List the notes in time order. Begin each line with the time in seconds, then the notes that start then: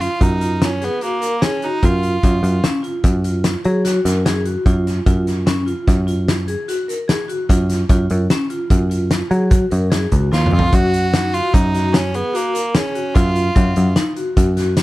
0.01 F4, snare, closed hi-hat
0.21 F#2 D#4, kick, closed hi-hat
0.41 F4, closed hi-hat
0.62 C#4, snare, closed hi-hat
0.82 B3 G#4, snare, closed hi-hat
1.01 A#3 F#4, closed hi-hat
1.21 A#4, closed hi-hat
1.41 C#4 G#4, snare, closed hi-hat
1.62 D#4 F#4, closed hi-hat
1.83 F#2 F4, kick, closed hi-hat
2.03 closed hi-hat
2.23 F#2 F4, kick, closed hi-hat
2.43 F#2, closed hi-hat
2.64 C#4, snare, closed hi-hat
2.83 F4, closed hi-hat
3.04 F#2, kick, closed hi-hat
3.24 F4, closed hi-hat
3.44 snare, closed hi-hat
3.64 F#3 G#4, closed hi-hat
3.85 F#4, snare, closed hi-hat
4.05 F#2 A#4, snare, closed hi-hat
4.26 G#4, snare, closed hi-hat
4.45 F#4, closed hi-hat
4.66 F#2 F4, kick, closed hi-hat
4.87 snare, closed hi-hat
5.06 F#2 F4, kick, closed hi-hat
5.27 snare, closed hi-hat
5.46 C#4, snare, closed hi-hat
5.66 F4, closed hi-hat
5.88 F#2, kick, snare, closed hi-hat
6.07 F4, closed hi-hat
6.28 snare, closed hi-hat
6.48 G#4, closed hi-hat
6.68 F#4, closed hi-hat
6.88 A#4, closed hi-hat
7.08 G#4, snare, closed hi-hat
7.28 F#4, closed hi-hat
7.49 F#2 F4, kick, closed hi-hat
7.70 snare, closed hi-hat
7.89 F#2 F4, kick, closed hi-hat
8.10 F#2, closed hi-hat
8.30 C#4, snare, closed hi-hat
8.50 F4, closed hi-hat
8.70 F#2, kick, closed hi-hat
8.90 F4, closed hi-hat
9.11 snare, closed hi-hat
9.30 F#3 G#4, closed hi-hat
9.50 F#4, kick, closed hi-hat
9.70 F#2 A#4, closed hi-hat
9.90 G#4, snare, closed hi-hat
10.11 C#2 F#4, kick, closed hi-hat
10.32 D#2 F4, snare
10.46 mid tom
10.53 F2 F4
10.59 floor tom
10.72 F#2 F#4, kick, closed hi-hat
10.94 closed hi-hat
11.13 D#4, snare, closed hi-hat
11.32 F4 F#4, closed hi-hat
11.54 F#2 D#4, kick, closed hi-hat
11.74 F#4, snare, closed hi-hat
11.93 C#4, snare, closed hi-hat
12.14 B3 G#4, closed hi-hat
12.33 A#3 F#4, closed hi-hat
12.54 A#4, closed hi-hat
12.75 C#4 G#4, snare, closed hi-hat
12.95 F#4, closed hi-hat
13.15 F#2 F4, kick, snare, closed hi-hat
13.36 closed hi-hat
13.55 F#2 F#3, kick, closed hi-hat
13.76 F#2, closed hi-hat
13.96 D#4, snare, closed hi-hat
14.16 F#4, closed hi-hat
14.37 F#2, kick, closed hi-hat
14.57 F#4, snare, closed hi-hat
14.77 snare, closed hi-hat